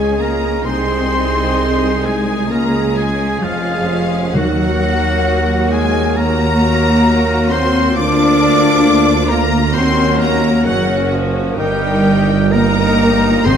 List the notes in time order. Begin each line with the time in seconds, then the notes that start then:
Already playing: C#2 G#3 C#4 G#4 G#5
0.19 A#3 A#4 A#5
0.64 C2 G#3 C4 D#4 G#4 C5 C6
2.04 G#3 G#4 G#5
2.50 C#2 G#3 A#3 C#4 G#4 A#4 A#5
2.96 G#3 G#4 G#5
3.41 F1 F2 F3 G#3 C#4 F4 G#4 F5
4.34 D#2 D#3 F#3 A#3 F#4 A#4 F#5
5.70 G#3 G#4 G#5
6.16 F#3 A#3 F#4 A#4 A#5
7.50 C4 C5 C6
7.94 D2 F3 A#3 D4 F4 A#4 D5 D6
9.28 A#3 A#4 A#5
9.74 D#2 F#3 C4 C#4 F#4 A#4 C5 C6
10.19 A#3 A#4 A#5
10.66 F#1 F#3 C#4 F#4 A#4 F#5
11.13 F3
11.57 G1 D#3 G3 D#4 G4 A#4 G5
12.50 D#3 A#3 D#4 A#4 A#5
13.45 G#1 G#2 D#3 C4 D#4 G#4 C5 C6